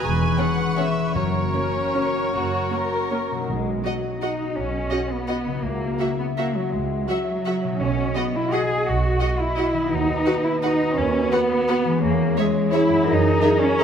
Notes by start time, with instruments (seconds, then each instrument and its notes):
Already playing: harp B3 B4, cor anglais B4
0.02 double bass section E1, cello section E2, harp E3, clarinet G#4, violin section G#5, flute C#6
0.21 harp C#4
0.38 viola section B3 C#4, violin section G#4 C#5 F#5, harp G#4
0.58 harp B4
0.77 viola section B3 C#4, violin section G#4 C#5 E5, harp C#5
0.97 harp B4
1.14 double bass section F#1, cello section F#2, harp F#2, timpani F#2, clarinet F#4, cor anglais A#4, violin section C#5, flute C#6
1.34 harp A#3
1.54 viola section A#3 C#4, harp C#4, violin section C#4
1.74 harp F#4
1.95 viola section A#3 C#4, harp A#4
2.15 harp F#4
2.33 double bass section F#1, harp F#2, cello section F#2, violin section F#4
2.53 harp A#3
2.71 viola section A#3 C#4, harp C#4, violin section A#4
2.91 harp F#4
3.10 viola section A#3 C#4, harp A#4
3.30 harp B2 F#4
3.35 harp F#3
3.40 harp D#4
3.44 harp F#4, french horn section F#4 D#5
3.48 double bass section B1, timpani B2, cello section G#3
3.85 cello section F#3, viola section F#4, violin section D#5 F#5
4.21 cello section D#4, viola section F#4, violin section D#5 F#5
4.56 double bass section B1, cello section C#4
4.91 viola section F#4, violin section D#5 F#5
5.10 cello section B3
5.27 viola section F#4, violin section D#5 F#5
5.45 harp C#3
5.49 harp F#3
5.54 harp E4
5.59 harp F#4
5.64 double bass section C#2, cello section A#3, french horn section F#4 E5
6.00 viola section F#4, violin section E5 F#5
6.19 cello section B3
6.37 cello section A#3, viola section F#4, violin section E5 F#5
6.55 cello section F#3
6.73 double bass section C#2, cello section G#3
7.08 cello section F#3, viola section F#4, violin section E5 F#5
7.45 viola section F#4, violin section E5 F#5
7.63 harp B2
7.68 harp B3
7.73 harp D#4
7.77 timpani B2, cello section C#4, harp F#4
7.81 double bass section B1, french horn section F#4 D#5
8.16 cello section B3, viola section F#4, violin section D#5 F#5
8.35 cello section E4
8.52 viola section F#4, cello section G#4, violin section D#5 F#5
8.87 double bass section B1, cello section F#4
9.21 viola section F#4, violin section D#5 F#5
9.39 cello section E4
9.57 viola section F#4, violin section D#5 F#5
9.74 harp D#3
9.78 harp B3
9.83 harp D#4
9.87 harp F#4, french horn section B4
9.91 double bass section D#2, cello section D#4, french horn section F#4
10.26 viola section F#4, violin section B4 F#5
10.45 cello section E4
10.62 cello section D#4, viola section F#4, violin section B4 F#5
10.97 double bass section D#2, cello section C#4
11.31 cello section B3, viola section F#4, violin section B4 F#5
11.68 viola section F#4, violin section B4 F#5
11.84 harp E3
11.89 harp G#3
11.93 harp C#4
11.98 harp G#4, french horn section G#4 C#5
12.02 double bass section E2, cello section A#3
12.37 cello section G#3, viola section G#4, violin section C#5 E5
12.72 cello section E4, viola section G#4, violin section C#5 E5
12.88 harp F#2
12.93 harp G#3
12.98 harp E4
13.02 harp A#4, french horn section A#4
13.07 double bass section F#2, cello section D#4
13.41 viola section G#4, violin section A#4 E5
13.60 cello section C#4
13.79 viola section G#4, violin section A#4 E5